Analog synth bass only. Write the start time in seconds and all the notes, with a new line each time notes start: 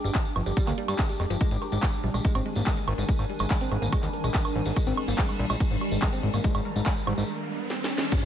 0.04 G1
0.36 G1
0.46 G1
0.67 D2
0.88 G2
1.20 F1
1.30 G1
1.51 G#1
1.72 G#1
2.04 A#1
2.14 A#1
2.35 G#1
2.56 G#1
2.88 G#1
2.98 G#1
3.19 G#1
3.40 G#1
3.72 G#1
3.82 G#1
4.03 D#2
4.24 A#1
4.55 G#1
4.66 G#1
4.87 G#1
5.08 G#1
5.39 A#1
5.50 A#1
5.71 G#1
5.92 G#1
6.23 G#1
6.34 G#1
6.55 G#1
6.76 G#1
7.07 G#1
7.18 G#1